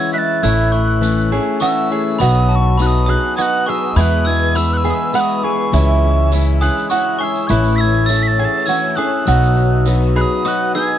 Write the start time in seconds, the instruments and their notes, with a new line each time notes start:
Already playing: grand piano C#2 C#3 G#3 E4 C#5 E5 F#5, steel-string acoustic guitar E3 G#3 C#4 E4, mandolin F#4, glockenspiel E6, tin whistle G#6
0.13 grand piano G#3 E4 C#5 D#5, mandolin E4, glockenspiel F#6, tin whistle B6
0.18 tin whistle A6
0.43 grand piano A1 A2 A3 C#4 E4 C#5 E5, upright bass A1, steel-string acoustic guitar A2 E3 A3 C#4 E4, mandolin E4, ambient pad C#5 E5 A5 E6, glockenspiel E6, tin whistle G#6, tambourine
0.58 tambourine
0.72 grand piano A3 C#4 E4 C#5 E5, glockenspiel C#6, tin whistle F#6, tambourine
1.01 steel-string acoustic guitar E3 A3 C#4 E4, grand piano A3 C#4 E4 C#5 E5, tambourine
1.16 tambourine
1.31 grand piano A3 C#4 E4 C#5 E5, steel-string acoustic guitar C#4 E4, mandolin G#4
1.35 steel-string acoustic guitar A3
1.60 steel-string acoustic guitar E3 A3 C#4 E4, grand piano A3 C#4 E4 C#5 E5, mandolin F#4, glockenspiel C#6, tin whistle E6, tambourine
1.90 grand piano A3 C#4 E4 C#5 E5, mandolin G#4
2.19 grand piano B1 B2 F#3 B3 D#4 B4 D#5, upright bass B1, steel-string acoustic guitar B2 F#3 B3 D#4 F#4, mandolin F#4, ambient pad B4 D#5 F#5 D#6, glockenspiel B5, tin whistle D#6, tambourine
2.35 tambourine
2.49 grand piano F#3 B3 D#4 B4 D#5, glockenspiel A5, tin whistle D#6, tambourine
2.55 tin whistle C#6
2.78 steel-string acoustic guitar F#3 B3 D#4 F#4, grand piano F#3 B3 D#4 B4 D#5, glockenspiel B5, tambourine
2.82 tin whistle F#6
2.87 tin whistle D#6
2.94 tambourine
3.06 grand piano F#3 B3 D#4 B4 D#5, steel-string acoustic guitar B3 D#4 F#4, mandolin G#4, glockenspiel D#6, tin whistle F#6
3.37 steel-string acoustic guitar F#3 B3 D#4 F#4, grand piano F#3 B3 D#4 B4 D#5, mandolin F#4, glockenspiel D#6, tin whistle G#6, tambourine
3.42 tin whistle F#6
3.66 grand piano F#3 B3 D#4 B4 D#5, steel-string acoustic guitar D#4 F#4, mandolin G#4, glockenspiel C#6, tin whistle E6 F#6
3.70 steel-string acoustic guitar B3
3.95 upright bass E2, grand piano E2 E3 G#3 B3 E4 B4 E5, steel-string acoustic guitar E2 B2 E3 G#3 B3 G#4, mandolin E4, ambient pad E5 G#5 E6, glockenspiel B5, tin whistle G#6, tambourine
4.01 tin whistle F#6
4.25 grand piano G#3 B3 E4 B4 E5, glockenspiel E6, tin whistle G#6, tambourine
4.55 steel-string acoustic guitar E3 G#3 B3 G#4, grand piano G#3 B3 E4 B4 E5, glockenspiel B5, tin whistle E6, tambourine
4.73 tin whistle E6 F#6
4.84 steel-string acoustic guitar E3 G#3 B3 G#4, grand piano G#3 B3 E4 B4 E5, mandolin G#4
4.90 tin whistle D#6 E6
5.13 steel-string acoustic guitar E3 G#3 B3 G#4, grand piano G#3 B3 E4 B4 E5, mandolin F#4, glockenspiel B5, tin whistle F#6, tambourine
5.20 tin whistle D#6
5.37 glockenspiel B5, tin whistle D#6
5.43 grand piano G#3 B3 E4 B4 E5, mandolin G#4, glockenspiel G#5, tin whistle C#6
5.72 upright bass C#2, grand piano C#2 C#3 G#3 C#4 E4 C#5 E5, steel-string acoustic guitar C#3 E3 G#3 C#4 E4, mandolin E4, ambient pad C#5 G#5, tambourine
6.03 grand piano G#3 C#4 E4 C#5 E5
6.32 steel-string acoustic guitar E3 G#3 C#4 E4, grand piano G#3 C#4 E4 C#5 E5, tambourine
6.61 grand piano G#3 C#4 E4 C#5 E5, mandolin G#4, glockenspiel D#6, tin whistle F#6, tambourine
6.77 tambourine
6.90 steel-string acoustic guitar E3 G#3 C#4 E4, grand piano G#3 C#4 E4 C#5 E5, mandolin F#4, glockenspiel C#6, tin whistle F#6, tambourine
7.19 grand piano G#3 C#4 E4 C#5 E5, mandolin G#4, glockenspiel C#6, tin whistle F#6
7.23 tin whistle E6
7.36 tambourine
7.47 grand piano A1 A2 A3 C#4 E4 C#5 E5, upright bass A1, steel-string acoustic guitar A2 E3, mandolin E4, ambient pad A5, glockenspiel C#6, tin whistle F#6 G#6, tambourine
7.51 steel-string acoustic guitar A3 C#4 E4, ambient pad E6
7.64 tambourine
7.76 grand piano A3 C#4 E4 C#5 E5, glockenspiel E6, tin whistle B6, tambourine
7.81 tin whistle G#6
8.06 steel-string acoustic guitar E3, grand piano A3 C#4 E4 C#5 E5, glockenspiel E6, tin whistle A6, tambourine
8.10 steel-string acoustic guitar A3 C#4 E4
8.23 tin whistle B6, tambourine
8.28 tin whistle A6
8.38 grand piano A3 C#4 E4 C#5 F#5, mandolin G#4, tin whistle G#6
8.45 tin whistle A6
8.66 steel-string acoustic guitar E3 A3 C#4, grand piano A3 C#4 E4 C#5 E5, mandolin F#4, glockenspiel E6, tin whistle G#6, tambourine
8.70 steel-string acoustic guitar E4
8.96 grand piano A3 C#4 E4 C#5 E5, steel-string acoustic guitar A3 C#4 E4, mandolin G#4, glockenspiel D#6, tin whistle F#6
9.26 grand piano B1 B2 F#3 B3 D#4 B4 D#5, upright bass B1, steel-string acoustic guitar B2 F#3 B3 D#4 F#4, mandolin F#4, ambient pad B4 D#5 F#5 D#6, tambourine
9.42 tambourine
9.56 grand piano F#3 B3 D#4 B4 D#5, tambourine
9.86 steel-string acoustic guitar F#3 B3 D#4 F#4, grand piano F#3 B3 D#4 B4 D#5, tambourine
10.02 tambourine
10.15 grand piano F#3 B3 D#4 B4 D#5, mandolin G#4, glockenspiel B5, tin whistle F#6
10.21 tin whistle D#6
10.44 steel-string acoustic guitar F#3 B3 D#4 F#4, grand piano F#3 B3 D#4 B4 D#5, mandolin F#4, glockenspiel D#6, tin whistle F#6, tambourine
10.74 grand piano F#3 B3 D#4 B4 D#5, steel-string acoustic guitar B3 D#4 F#4, mandolin G#4, glockenspiel E6, tin whistle G#6